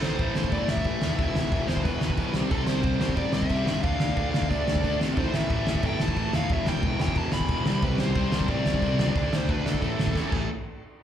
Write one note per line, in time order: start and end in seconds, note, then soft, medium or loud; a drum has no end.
0.00 0.14 A1 medium
0.00 0.19 A2 loud
0.00 0.20 E3 loud
0.00 0.20 A3 loud
0.00 0.54 C5 medium
0.00 snare loud
0.19 0.31 A1 medium
0.19 0.35 A2 medium
0.19 0.36 E3 loud
0.19 0.35 A3 medium
0.19 kick loud
0.19 crash medium
0.35 0.48 A1 medium
0.35 0.52 A2 medium
0.35 0.53 E3 medium
0.35 0.53 A3 loud
0.35 snare loud
0.44 kick medium
0.52 0.64 G1 loud
0.52 0.85 A2 loud
0.52 0.86 E3 loud
0.52 0.86 A3 loud
0.52 0.68 D5 medium
0.52 kick loud
0.52 crash medium
0.68 0.81 A1 medium
0.68 1.16 E5 loud
0.68 snare loud
0.77 kick loud
0.84 0.97 A1 medium
0.84 1.03 A2 medium
0.84 1.03 E3 medium
0.84 1.01 A3 medium
0.84 kick loud
0.84 crash medium
1.02 1.14 E2 loud
1.02 1.19 A2 medium
1.02 1.20 E3 medium
1.02 1.18 A3 loud
1.02 snare loud
1.17 1.30 E1 medium
1.17 1.51 E2 loud
1.17 1.52 B2 loud
1.17 1.53 E3 loud
1.17 1.69 E5 loud
1.17 kick loud
1.17 crash medium
1.35 1.47 E1 loud
1.35 snare loud
1.52 1.63 E1 loud
1.52 1.68 E2 loud
1.52 1.68 B2 loud
1.52 1.68 E3 medium
1.52 kick loud
1.52 crash medium
1.67 1.80 E1 medium
1.67 1.84 E2 medium
1.67 1.85 B2 medium
1.67 1.85 E3 medium
1.67 1.83 C5 medium
1.67 snare loud
1.77 kick medium
1.83 1.96 E1 loud
1.83 2.18 E2 loud
1.83 2.18 B2 loud
1.83 2.18 E3 loud
1.83 2.34 B4 medium
1.83 kick loud
1.83 crash medium
2.01 2.13 E1 medium
2.01 snare loud
2.10 kick medium
2.17 2.29 B1 medium
2.17 2.35 E2 medium
2.17 2.35 B2 medium
2.17 2.35 E3 medium
2.17 kick loud
2.17 crash medium
2.34 2.45 C2 loud
2.34 2.51 C3 medium
2.34 2.50 G3 loud
2.34 2.50 C4 loud
2.34 snare loud
2.51 2.63 C2 medium
2.51 2.83 C3 medium
2.51 2.83 G3 loud
2.51 2.82 C4 loud
2.51 2.67 A4 loud
2.51 kick loud
2.51 crash medium
2.67 2.79 C2 loud
2.67 3.19 C5 loud
2.67 snare loud
2.83 2.96 C2 medium
2.83 2.99 C3 medium
2.83 3.00 G3 medium
2.83 3.00 C4 loud
2.83 kick loud
2.83 crash medium
3.00 3.12 C2 loud
3.00 3.16 C3 medium
3.00 3.15 G3 loud
3.00 3.15 C4 medium
3.00 snare loud
3.09 kick medium
3.16 3.29 A1 loud
3.16 3.50 C3 medium
3.16 3.50 G3 loud
3.16 3.49 C4 loud
3.16 3.34 D5 loud
3.16 kick loud
3.16 crash medium
3.33 3.45 C2 loud
3.33 3.82 E5 loud
3.33 snare loud
3.42 kick medium
3.49 3.62 C2 loud
3.49 3.65 C3 medium
3.49 3.66 G3 medium
3.49 3.66 C4 loud
3.49 kick medium
3.49 crash medium
3.66 3.78 G2 loud
3.66 3.83 C3 medium
3.66 3.83 G3 medium
3.66 3.83 C4 medium
3.66 snare loud
3.83 3.95 D2 medium
3.83 4.16 D3 medium
3.83 4.17 A3 loud
3.83 4.17 D4 loud
3.83 4.30 F5 loud
3.83 kick loud
3.83 crash medium
4.00 4.11 D2 medium
4.00 snare loud
4.16 4.28 D2 medium
4.16 4.33 D3 medium
4.16 4.34 A3 loud
4.16 4.33 D4 loud
4.16 kick loud
4.16 crash medium
4.31 4.45 D2 medium
4.31 4.50 D3 medium
4.31 4.50 A3 medium
4.31 4.50 D4 medium
4.31 4.49 F5 loud
4.31 snare loud
4.42 kick medium
4.49 4.62 D2 loud
4.49 4.83 D3 loud
4.49 4.83 A3 loud
4.49 4.83 D4 loud
4.49 5.00 D5 loud
4.49 kick loud
4.49 crash medium
4.67 4.78 D2 medium
4.67 snare loud
4.76 kick loud
4.84 4.95 D2 loud
4.84 5.00 D3 medium
4.84 5.00 A3 medium
4.84 4.99 D4 medium
4.84 kick loud
4.84 crash medium
5.00 5.19 C3 medium
5.00 5.17 D3 medium
5.00 5.16 A3 medium
5.00 5.16 D4 medium
5.00 snare loud
5.17 5.28 A1 medium
5.17 5.49 A2 medium
5.17 5.50 E3 loud
5.17 5.50 A3 loud
5.17 5.35 C5 loud
5.17 kick loud
5.17 crash medium
5.33 5.45 A1 loud
5.33 5.86 E5 loud
5.33 snare loud
5.50 5.61 A1 medium
5.50 5.66 A2 medium
5.50 5.66 E3 medium
5.50 5.65 A3 loud
5.50 kick loud
5.50 crash medium
5.66 5.78 A1 medium
5.66 5.83 A2 medium
5.66 5.84 E3 medium
5.66 5.83 A3 loud
5.66 snare loud
5.75 kick medium
5.83 5.95 G1 medium
5.83 6.15 A2 loud
5.83 6.17 E3 loud
5.83 6.16 A3 loud
5.83 6.01 G5 loud
5.83 kick loud
5.83 crash medium
6.00 6.11 A1 medium
6.00 6.35 A5 loud
6.00 snare loud
6.08 kick loud
6.17 6.28 A1 medium
6.17 6.33 A2 medium
6.17 6.34 E3 medium
6.17 6.33 A3 medium
6.17 kick loud
6.17 crash medium
6.33 6.45 E2 loud
6.33 6.50 A2 medium
6.33 6.51 E3 medium
6.33 6.49 A3 medium
6.33 6.50 F5 loud
6.33 snare loud
6.49 6.61 E1 medium
6.49 6.82 E2 loud
6.49 6.83 B2 loud
6.49 6.84 E3 loud
6.49 6.68 E5 loud
6.49 kick loud
6.49 crash medium
6.66 6.78 E1 loud
6.66 7.00 G5 loud
6.66 snare loud
6.83 6.94 E1 medium
6.83 7.00 E2 medium
6.83 6.99 B2 medium
6.83 7.00 E3 loud
6.83 kick loud
6.83 crash medium
7.00 7.11 E1 medium
7.00 7.16 E2 medium
7.00 7.16 B2 medium
7.00 7.16 E3 medium
7.00 7.17 G5 loud
7.00 snare loud
7.08 kick medium
7.15 7.27 E1 loud
7.15 7.49 E2 loud
7.15 7.49 B2 loud
7.15 7.50 E3 loud
7.15 7.33 A5 loud
7.15 kick loud
7.15 crash medium
7.32 7.44 E1 medium
7.32 7.85 B5 loud
7.32 snare loud
7.41 kick medium
7.48 7.66 E1 medium
7.48 7.65 E2 medium
7.48 7.66 B2 medium
7.48 7.66 E3 medium
7.48 kick loud
7.48 crash medium
7.66 7.77 C2 loud
7.66 7.83 C3 medium
7.66 7.83 G3 medium
7.66 7.83 C4 loud
7.66 snare loud
7.82 7.94 C2 medium
7.82 8.15 C3 medium
7.82 8.15 G3 loud
7.82 8.15 C4 loud
7.82 8.00 B4 loud
7.82 kick loud
7.82 crash medium
7.98 8.10 C2 loud
7.98 8.49 C5 loud
7.98 snare loud
8.15 8.27 C2 loud
8.15 8.31 C3 medium
8.15 8.32 G3 medium
8.15 8.31 C4 medium
8.15 kick loud
8.15 crash medium
8.32 8.44 C2 medium
8.32 8.48 C3 medium
8.32 8.48 G3 medium
8.32 8.47 C4 medium
8.32 snare loud
8.41 kick medium
8.48 8.60 A1 loud
8.48 8.82 C3 medium
8.48 8.82 G3 loud
8.48 8.80 C4 loud
8.48 9.12 D5 loud
8.48 kick loud
8.48 crash medium
8.66 8.77 C2 medium
8.66 snare loud
8.74 kick loud
8.82 8.94 C2 medium
8.82 8.97 C3 medium
8.82 8.97 G3 medium
8.82 8.98 C4 medium
8.82 kick loud
8.82 crash medium
8.98 9.11 C#2 loud
8.98 9.14 C3 medium
8.98 9.15 G3 medium
8.98 9.15 C4 medium
8.98 snare loud
9.15 9.27 D2 loud
9.15 9.47 D3 loud
9.15 9.47 A3 loud
9.15 9.47 D4 loud
9.15 9.35 D5 loud
9.15 kick loud
9.15 crash medium
9.33 9.44 D2 loud
9.33 9.51 C5 medium
9.33 snare loud
9.48 9.61 D2 medium
9.48 9.64 D3 medium
9.48 9.64 A3 medium
9.48 9.63 D4 loud
9.48 9.67 B4 loud
9.48 kick loud
9.48 crash medium
9.65 9.77 D2 medium
9.65 9.81 D3 medium
9.65 9.81 A3 medium
9.65 9.81 D4 loud
9.65 10.33 A4 medium
9.65 snare loud
9.74 kick medium
9.81 9.94 A1 medium
9.81 10.14 A2 loud
9.81 10.14 E3 loud
9.81 10.14 A3 loud
9.81 kick medium
9.81 crash medium
9.99 10.10 A1 loud
9.99 snare loud
10.07 kick loud
10.15 10.27 A1 loud
10.15 10.30 A2 medium
10.15 10.30 E3 medium
10.15 10.31 A3 medium
10.15 kick loud
10.15 snare medium
10.31 10.48 A1 loud
10.31 10.45 A2 loud
10.31 10.46 E3 medium
10.31 10.46 A3 medium
10.31 10.49 A4 medium
10.31 kick loud
10.31 crash loud